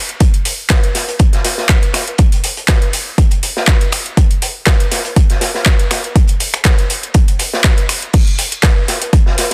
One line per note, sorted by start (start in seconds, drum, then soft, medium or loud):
0.09 closed hi-hat soft
0.20 kick loud
0.20 closed hi-hat medium
0.34 closed hi-hat soft
0.45 closed hi-hat medium
0.45 open hi-hat loud
0.70 kick loud
0.70 snare loud
0.70 clap loud
0.70 closed hi-hat medium
0.83 closed hi-hat soft
0.95 snare soft
0.95 closed hi-hat medium
0.95 open hi-hat loud
1.08 closed hi-hat soft
1.19 kick loud
1.19 closed hi-hat medium
1.33 snare soft
1.33 closed hi-hat soft
1.44 snare soft
1.44 closed hi-hat medium
1.44 open hi-hat loud
1.58 snare soft
1.69 kick loud
1.69 snare loud
1.69 clap loud
1.69 closed hi-hat medium
1.83 closed hi-hat soft
1.94 finger snap medium
1.94 snare soft
1.94 closed hi-hat medium
1.94 open hi-hat loud
2.07 closed hi-hat soft
2.18 kick loud
2.18 closed hi-hat medium
2.32 closed hi-hat medium
2.32 closed hi-hat soft
2.44 closed hi-hat medium
2.44 open hi-hat loud
2.57 closed hi-hat soft
2.68 kick loud
2.68 snare loud
2.68 clap loud
2.68 closed hi-hat medium
2.82 closed hi-hat soft
2.93 closed hi-hat medium
2.93 open hi-hat loud
3.18 kick loud
3.18 closed hi-hat medium
3.31 closed hi-hat soft
3.31 closed hi-hat medium
3.43 closed hi-hat medium
3.43 open hi-hat loud
3.57 snare soft
3.67 kick loud
3.67 snare loud
3.67 clap loud
3.67 closed hi-hat medium
3.81 closed hi-hat medium
3.92 finger snap medium
3.92 closed hi-hat medium
3.92 open hi-hat loud
4.06 closed hi-hat soft
4.17 kick loud
4.17 closed hi-hat medium
4.31 closed hi-hat medium
4.42 closed hi-hat medium
4.42 open hi-hat loud
4.66 kick loud
4.66 snare loud
4.66 clap loud
4.66 closed hi-hat medium
4.80 closed hi-hat medium
4.91 snare soft
4.91 closed hi-hat medium
4.91 open hi-hat loud
5.05 closed hi-hat soft
5.16 kick loud
5.16 closed hi-hat medium
5.30 snare soft
5.30 closed hi-hat medium
5.41 snare soft
5.41 closed hi-hat medium
5.41 open hi-hat loud
5.54 snare soft
5.66 kick loud
5.66 snare loud
5.66 clap loud
5.66 closed hi-hat medium
5.79 closed hi-hat medium
5.91 finger snap medium
5.91 snare soft
5.91 closed hi-hat medium
5.91 open hi-hat loud
6.04 closed hi-hat soft
6.16 kick loud
6.16 closed hi-hat medium
6.27 closed hi-hat soft
6.27 closed hi-hat medium
6.40 closed hi-hat medium
6.40 open hi-hat loud
6.54 finger snap medium
6.54 closed hi-hat soft
6.64 kick loud
6.64 snare loud
6.64 clap loud
6.64 closed hi-hat medium
6.78 closed hi-hat medium
6.90 closed hi-hat medium
6.90 open hi-hat loud
7.03 closed hi-hat soft
7.14 kick loud
7.14 closed hi-hat medium
7.28 closed hi-hat medium
7.28 closed hi-hat soft
7.39 closed hi-hat medium
7.39 open hi-hat loud
7.53 snare soft
7.64 kick loud
7.64 snare loud
7.64 clap loud
7.64 closed hi-hat medium
7.78 closed hi-hat medium
7.89 finger snap medium
7.89 closed hi-hat medium
7.89 open hi-hat loud
8.02 closed hi-hat soft
8.13 kick loud
8.13 closed hi-hat medium
8.13 crash loud
8.27 closed hi-hat soft
8.38 closed hi-hat medium
8.38 open hi-hat loud
8.52 closed hi-hat medium
8.63 kick loud
8.63 snare loud
8.63 clap loud
8.63 closed hi-hat medium
8.88 snare soft
8.88 closed hi-hat medium
8.88 open hi-hat loud
9.01 closed hi-hat soft
9.01 closed hi-hat medium
9.13 kick loud
9.13 closed hi-hat medium
9.26 snare soft
9.38 snare soft
9.38 closed hi-hat medium
9.38 open hi-hat loud